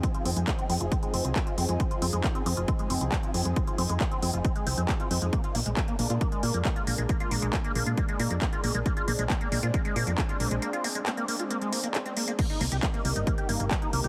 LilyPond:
<<
  \new Staff \with { instrumentName = "Analog synth pad" } { \time 4/4 \key bes \mixolydian \tempo 4 = 136 << { <f c' aes'>1~ | <f c' aes'>1~ | <f c' aes'>1 | <aes d'>1~ |
<aes d'>1~ | <aes d'>1~ | <aes d'>1 | <c g ees'>1 | } \\ { ees'1~ | ees'1~ | ees'1 | bes1~ |
bes1 | c'1~ | c'1 | bes1 | } >> }
  \new Staff \with { instrumentName = "Acid bass" } { \time 4/4 \key bes \mixolydian c'16 f'16 c'16 aes16 c'16 c'16 c'16 f'16 c'16 aes16 c'16 c'16 c'16 f'16 c'16 aes16 | c'16 f'16 c'16 aes16 c'16 c'16 c'16 f'16 c'16 aes16 c'16 c'16 c'16 f'16 c'16 aes16 | c'16 f'16 c'16 aes16 c'16 c'16 c'16 f'16 c'16 aes16 c'16 c'16 c'16 f'16 c'16 aes16 | bes16 f'16 bes16 aes16 bes16 bes16 bes16 f'16 bes16 aes16 bes16 bes16 bes16 f'16 bes16 aes16 |
bes16 f'16 bes16 aes16 bes16 bes16 bes16 f'16 bes16 aes16 bes16 bes16 bes16 f'16 bes16 aes16 | bes16 f'16 bes16 aes16 bes16 bes16 bes16 f'16 bes16 aes16 bes16 bes16 bes16 f'16 bes16 aes16 | bes16 f'16 bes16 aes16 bes16 bes16 bes16 f'16 bes16 aes16 bes16 bes16 c'16 c'16 bes16 bes16 | bes16 ees'16 bes16 g'16 bes16 bes16 bes16 ees'16 bes16 g'16 bes16 bes16 bes16 ees'16 bes16 g'16 | }
  \new Staff \with { instrumentName = "FM bass" } { \clef bass \time 4/4 \key bes \mixolydian r8 f,16 f,16 r8 f,16 f,,16 r8 f,,16 c,16 r8 f,16 f,16 | r8 f,16 f,16 r8 f,16 f,,16 r8 f,,16 c,16 r8 f,16 f,16 | r8 f,16 f,16 r8 f,16 f,,16 r8 c,16 f,16 r8 f,16 f,16 | r8 bes,,16 bes,,16 r8 bes,,16 bes,16 r8 bes,16 f,16 r8 bes,,16 bes,,16 |
r8 bes,,16 bes,,16 r8 bes,,16 bes,16 r8 bes,16 f,16 r8 bes,,16 bes,,16 | r8 bes,,16 bes,,16 r8 bes,,16 bes,16 r8 bes,16 f,16 r8 bes,,16 bes,,16 | r1 | r8 c,16 c,16 r8 c,16 g,,16 r8 g,,16 g,,16 r8 c,16 c,16 | }
  \new DrumStaff \with { instrumentName = "Drums" } \drummode { \time 4/4 <hh bd>16 hh16 hho16 hh16 <hc hh bd>16 hh16 hho16 hh16 <hh bd>16 hh16 hho16 hh16 <hc hh bd>16 hh16 hho16 hh16 | <hh bd>16 hh16 hho16 hh16 <hc hh bd>16 hh16 hho16 hh16 <hh bd>16 hh16 hho16 hh16 <hc hh bd>16 hh16 hho16 hh16 | <hh bd>16 hh16 hho16 hh16 <hc hh bd>16 hh16 hho16 hh16 <hh bd>16 hh16 hho16 hh16 <hc hh bd>16 hh16 hho16 hh16 | <hh bd>16 hh16 hho16 hh16 <hc hh bd>16 hh16 hho16 hh16 <hh bd>16 hh16 hho16 hh16 <hc hh bd>16 hh16 hho16 hh16 |
<hh bd>16 hh16 hho16 hh16 <hc hh bd>16 hh16 hho16 hh16 <hh bd>16 hh16 hho16 hh16 <hc hh bd>16 hh16 hho16 hh16 | <hh bd>16 hh16 hho16 hh16 <hc hh bd>16 hh16 hho16 hh16 <hh bd>16 hh16 hho16 hh16 <hc hh bd>16 hh16 hho16 hh16 | hh16 hh16 hho16 hh16 <hc hh>16 hh16 hho16 hh16 hh16 hh16 hho16 hh16 <hc hh>16 hh16 hho16 hh16 | <cymc hh bd>16 hh16 hho16 hh16 <hc hh bd>16 hh16 hho16 hh16 <hh bd>16 hh16 hho16 hh16 <hc hh bd>16 hh16 hho16 hh16 | }
>>